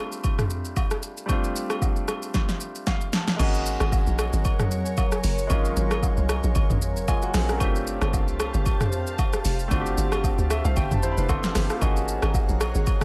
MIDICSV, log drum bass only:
0, 0, Header, 1, 2, 480
1, 0, Start_track
1, 0, Tempo, 526316
1, 1178, Time_signature, 4, 2, 24, 8
1, 11895, End_track
2, 0, Start_track
2, 0, Title_t, "Log drum bass"
2, 0, Program_c, 0, 39
2, 3097, Note_on_c, 0, 32, 114
2, 3435, Note_off_c, 0, 32, 0
2, 3469, Note_on_c, 0, 32, 96
2, 3687, Note_off_c, 0, 32, 0
2, 3711, Note_on_c, 0, 34, 83
2, 3928, Note_off_c, 0, 34, 0
2, 3950, Note_on_c, 0, 32, 92
2, 4048, Note_off_c, 0, 32, 0
2, 4778, Note_on_c, 0, 30, 94
2, 4996, Note_off_c, 0, 30, 0
2, 5018, Note_on_c, 0, 32, 110
2, 5235, Note_off_c, 0, 32, 0
2, 5258, Note_on_c, 0, 32, 98
2, 5595, Note_off_c, 0, 32, 0
2, 5630, Note_on_c, 0, 36, 88
2, 5848, Note_off_c, 0, 36, 0
2, 5872, Note_on_c, 0, 34, 90
2, 5969, Note_off_c, 0, 34, 0
2, 5980, Note_on_c, 0, 32, 97
2, 6099, Note_off_c, 0, 32, 0
2, 6109, Note_on_c, 0, 32, 91
2, 6349, Note_on_c, 0, 30, 90
2, 6363, Note_off_c, 0, 32, 0
2, 6665, Note_off_c, 0, 30, 0
2, 6697, Note_on_c, 0, 34, 89
2, 6938, Note_on_c, 0, 31, 114
2, 6951, Note_off_c, 0, 34, 0
2, 7275, Note_off_c, 0, 31, 0
2, 7310, Note_on_c, 0, 31, 97
2, 7549, Note_on_c, 0, 36, 84
2, 7563, Note_off_c, 0, 31, 0
2, 7767, Note_off_c, 0, 36, 0
2, 7790, Note_on_c, 0, 31, 96
2, 7888, Note_off_c, 0, 31, 0
2, 8617, Note_on_c, 0, 29, 95
2, 8835, Note_off_c, 0, 29, 0
2, 8857, Note_on_c, 0, 31, 104
2, 9075, Note_off_c, 0, 31, 0
2, 9097, Note_on_c, 0, 31, 100
2, 9434, Note_off_c, 0, 31, 0
2, 9469, Note_on_c, 0, 38, 88
2, 9687, Note_off_c, 0, 38, 0
2, 9710, Note_on_c, 0, 36, 103
2, 9808, Note_off_c, 0, 36, 0
2, 9821, Note_on_c, 0, 31, 105
2, 9939, Note_off_c, 0, 31, 0
2, 9950, Note_on_c, 0, 31, 92
2, 10168, Note_off_c, 0, 31, 0
2, 10190, Note_on_c, 0, 29, 96
2, 10288, Note_off_c, 0, 29, 0
2, 10298, Note_on_c, 0, 31, 95
2, 10418, Note_off_c, 0, 31, 0
2, 10540, Note_on_c, 0, 31, 97
2, 10659, Note_off_c, 0, 31, 0
2, 10778, Note_on_c, 0, 32, 109
2, 11115, Note_off_c, 0, 32, 0
2, 11151, Note_on_c, 0, 32, 98
2, 11368, Note_off_c, 0, 32, 0
2, 11390, Note_on_c, 0, 34, 87
2, 11608, Note_off_c, 0, 34, 0
2, 11628, Note_on_c, 0, 32, 92
2, 11727, Note_off_c, 0, 32, 0
2, 11895, End_track
0, 0, End_of_file